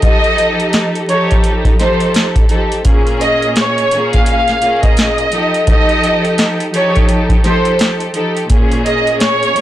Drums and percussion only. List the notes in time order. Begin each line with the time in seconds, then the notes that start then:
0.02 kick, closed hi-hat
0.24 closed hi-hat
0.38 closed hi-hat
0.60 closed hi-hat
0.73 snare, closed hi-hat
0.95 closed hi-hat
1.09 closed hi-hat
1.31 kick, closed hi-hat
1.44 closed hi-hat
1.65 kick, closed hi-hat
1.79 snare, closed hi-hat
2.00 closed hi-hat
2.14 snare, closed hi-hat
2.36 kick, closed hi-hat
2.49 closed hi-hat
2.72 closed hi-hat
2.85 kick, closed hi-hat
3.07 closed hi-hat
3.21 closed hi-hat
3.42 closed hi-hat
3.56 snare, closed hi-hat
3.78 closed hi-hat
3.91 closed hi-hat
4.13 kick, closed hi-hat
4.26 closed hi-hat
4.48 snare, closed hi-hat
4.62 closed hi-hat
4.83 kick, closed hi-hat
4.97 snare, closed hi-hat
5.18 closed hi-hat
5.32 closed hi-hat
5.54 closed hi-hat
5.67 kick, closed hi-hat
5.89 closed hi-hat
6.04 closed hi-hat
6.25 closed hi-hat
6.38 snare, closed hi-hat
6.60 closed hi-hat
6.74 closed hi-hat
6.96 kick, closed hi-hat
7.09 closed hi-hat
7.30 kick, closed hi-hat
7.44 snare, closed hi-hat
7.65 closed hi-hat
7.79 snare, closed hi-hat
8.00 closed hi-hat
8.14 closed hi-hat
8.37 closed hi-hat
8.50 kick, closed hi-hat
8.71 closed hi-hat
8.86 closed hi-hat
9.07 closed hi-hat
9.20 snare, closed hi-hat
9.43 closed hi-hat
9.56 closed hi-hat